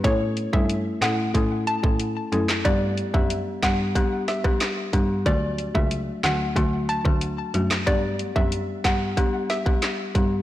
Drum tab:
HH |x-x-x-x-x-x-x-x-|x-x-x-x-x-x-x-x-|x-x-x-x-x-x-x-x-|x-x-x-x-x-x-x-x-|
CP |------x--------x|------x-----x---|------x--------x|------x-----x---|
SD |------o--------o|------o---oro---|------o--------o|------o---o-o---|
BD |o--o----o--o----|o--o--o-o--o--o-|o--o----o--o----|o--o--o-o--o--o-|